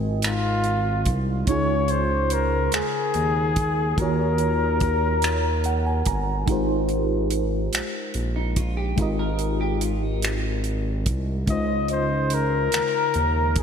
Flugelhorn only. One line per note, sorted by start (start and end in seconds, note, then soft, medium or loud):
0.25 1.14 F4 medium
1.49 1.92 C#5 loud
1.91 2.35 C5 medium
2.33 2.74 A#4 medium
2.75 4.01 G#4 medium
4.00 6.07 A#4 medium
11.50 11.88 D#5 medium
11.92 12.36 C5 medium
12.34 13.60 A#4 loud
13.59 13.63 G#4 medium